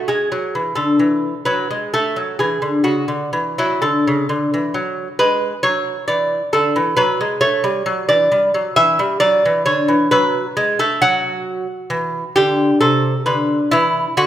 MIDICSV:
0, 0, Header, 1, 2, 480
1, 0, Start_track
1, 0, Tempo, 923077
1, 49, Time_signature, 4, 2, 24, 8
1, 1489, Tempo, 947867
1, 2449, Tempo, 896861
1, 7538, End_track
2, 0, Start_track
2, 0, Title_t, "Lute"
2, 0, Program_c, 0, 24
2, 41, Note_on_c, 0, 68, 75
2, 45, Note_on_c, 0, 56, 66
2, 161, Note_off_c, 0, 56, 0
2, 165, Note_on_c, 0, 54, 62
2, 280, Note_off_c, 0, 54, 0
2, 286, Note_on_c, 0, 52, 63
2, 389, Note_off_c, 0, 68, 0
2, 392, Note_on_c, 0, 69, 73
2, 395, Note_off_c, 0, 52, 0
2, 397, Note_on_c, 0, 50, 63
2, 515, Note_off_c, 0, 50, 0
2, 517, Note_on_c, 0, 52, 57
2, 694, Note_off_c, 0, 52, 0
2, 746, Note_off_c, 0, 69, 0
2, 756, Note_on_c, 0, 71, 79
2, 759, Note_on_c, 0, 54, 70
2, 879, Note_off_c, 0, 54, 0
2, 887, Note_on_c, 0, 56, 61
2, 995, Note_off_c, 0, 71, 0
2, 1003, Note_off_c, 0, 56, 0
2, 1006, Note_on_c, 0, 69, 83
2, 1009, Note_on_c, 0, 57, 72
2, 1125, Note_off_c, 0, 57, 0
2, 1125, Note_on_c, 0, 54, 56
2, 1239, Note_off_c, 0, 69, 0
2, 1241, Note_off_c, 0, 54, 0
2, 1243, Note_on_c, 0, 68, 73
2, 1247, Note_on_c, 0, 52, 64
2, 1359, Note_off_c, 0, 52, 0
2, 1361, Note_on_c, 0, 50, 57
2, 1475, Note_off_c, 0, 68, 0
2, 1476, Note_off_c, 0, 50, 0
2, 1476, Note_on_c, 0, 66, 68
2, 1478, Note_on_c, 0, 49, 66
2, 1596, Note_off_c, 0, 49, 0
2, 1599, Note_on_c, 0, 50, 60
2, 1720, Note_off_c, 0, 50, 0
2, 1724, Note_on_c, 0, 52, 69
2, 1835, Note_off_c, 0, 66, 0
2, 1846, Note_off_c, 0, 52, 0
2, 1854, Note_on_c, 0, 64, 75
2, 1856, Note_on_c, 0, 54, 67
2, 1971, Note_on_c, 0, 69, 85
2, 1973, Note_off_c, 0, 54, 0
2, 1974, Note_on_c, 0, 50, 65
2, 1978, Note_off_c, 0, 64, 0
2, 2092, Note_off_c, 0, 50, 0
2, 2102, Note_on_c, 0, 49, 68
2, 2211, Note_off_c, 0, 49, 0
2, 2213, Note_on_c, 0, 50, 63
2, 2325, Note_off_c, 0, 50, 0
2, 2336, Note_on_c, 0, 52, 62
2, 2441, Note_on_c, 0, 54, 66
2, 2444, Note_off_c, 0, 52, 0
2, 2616, Note_off_c, 0, 54, 0
2, 2664, Note_off_c, 0, 69, 0
2, 2680, Note_on_c, 0, 71, 95
2, 2682, Note_on_c, 0, 56, 74
2, 2857, Note_off_c, 0, 56, 0
2, 2913, Note_off_c, 0, 71, 0
2, 2915, Note_on_c, 0, 73, 96
2, 2918, Note_on_c, 0, 54, 76
2, 3094, Note_off_c, 0, 54, 0
2, 3151, Note_off_c, 0, 73, 0
2, 3154, Note_on_c, 0, 74, 89
2, 3159, Note_on_c, 0, 52, 64
2, 3334, Note_off_c, 0, 52, 0
2, 3390, Note_off_c, 0, 74, 0
2, 3396, Note_on_c, 0, 69, 82
2, 3402, Note_on_c, 0, 50, 79
2, 3518, Note_off_c, 0, 50, 0
2, 3519, Note_on_c, 0, 52, 69
2, 3629, Note_on_c, 0, 71, 99
2, 3631, Note_off_c, 0, 69, 0
2, 3632, Note_off_c, 0, 52, 0
2, 3634, Note_on_c, 0, 54, 82
2, 3754, Note_off_c, 0, 54, 0
2, 3758, Note_on_c, 0, 56, 67
2, 3864, Note_off_c, 0, 71, 0
2, 3866, Note_on_c, 0, 57, 76
2, 3866, Note_on_c, 0, 73, 89
2, 3877, Note_off_c, 0, 56, 0
2, 3990, Note_off_c, 0, 57, 0
2, 3990, Note_on_c, 0, 55, 76
2, 4106, Note_off_c, 0, 55, 0
2, 4108, Note_on_c, 0, 54, 85
2, 4218, Note_off_c, 0, 73, 0
2, 4228, Note_off_c, 0, 54, 0
2, 4229, Note_on_c, 0, 74, 91
2, 4232, Note_on_c, 0, 52, 69
2, 4350, Note_off_c, 0, 52, 0
2, 4352, Note_on_c, 0, 55, 64
2, 4469, Note_off_c, 0, 55, 0
2, 4474, Note_on_c, 0, 54, 70
2, 4578, Note_off_c, 0, 74, 0
2, 4590, Note_off_c, 0, 54, 0
2, 4591, Note_on_c, 0, 76, 112
2, 4592, Note_on_c, 0, 52, 78
2, 4710, Note_off_c, 0, 52, 0
2, 4715, Note_on_c, 0, 55, 76
2, 4823, Note_off_c, 0, 76, 0
2, 4825, Note_on_c, 0, 74, 111
2, 4826, Note_off_c, 0, 55, 0
2, 4828, Note_on_c, 0, 54, 89
2, 4949, Note_off_c, 0, 54, 0
2, 4962, Note_on_c, 0, 52, 72
2, 5066, Note_off_c, 0, 74, 0
2, 5069, Note_on_c, 0, 73, 92
2, 5073, Note_on_c, 0, 50, 71
2, 5077, Note_off_c, 0, 52, 0
2, 5191, Note_on_c, 0, 52, 70
2, 5193, Note_off_c, 0, 50, 0
2, 5309, Note_off_c, 0, 73, 0
2, 5313, Note_off_c, 0, 52, 0
2, 5314, Note_on_c, 0, 71, 105
2, 5317, Note_on_c, 0, 54, 82
2, 5493, Note_off_c, 0, 54, 0
2, 5557, Note_on_c, 0, 56, 88
2, 5664, Note_off_c, 0, 71, 0
2, 5675, Note_off_c, 0, 56, 0
2, 5678, Note_on_c, 0, 69, 95
2, 5681, Note_on_c, 0, 57, 82
2, 5796, Note_off_c, 0, 57, 0
2, 5798, Note_on_c, 0, 66, 106
2, 5801, Note_off_c, 0, 69, 0
2, 5801, Note_on_c, 0, 54, 82
2, 6144, Note_off_c, 0, 54, 0
2, 6271, Note_on_c, 0, 52, 76
2, 6447, Note_off_c, 0, 52, 0
2, 6494, Note_off_c, 0, 66, 0
2, 6515, Note_on_c, 0, 67, 116
2, 6521, Note_on_c, 0, 50, 86
2, 6694, Note_off_c, 0, 50, 0
2, 6749, Note_off_c, 0, 67, 0
2, 6755, Note_on_c, 0, 69, 101
2, 6759, Note_on_c, 0, 48, 78
2, 6934, Note_off_c, 0, 48, 0
2, 6990, Note_off_c, 0, 69, 0
2, 6997, Note_on_c, 0, 71, 91
2, 7000, Note_on_c, 0, 50, 76
2, 7175, Note_off_c, 0, 50, 0
2, 7232, Note_off_c, 0, 71, 0
2, 7242, Note_on_c, 0, 64, 108
2, 7250, Note_on_c, 0, 52, 94
2, 7423, Note_off_c, 0, 52, 0
2, 7476, Note_off_c, 0, 64, 0
2, 7486, Note_on_c, 0, 50, 92
2, 7488, Note_on_c, 0, 66, 105
2, 7538, Note_off_c, 0, 50, 0
2, 7538, Note_off_c, 0, 66, 0
2, 7538, End_track
0, 0, End_of_file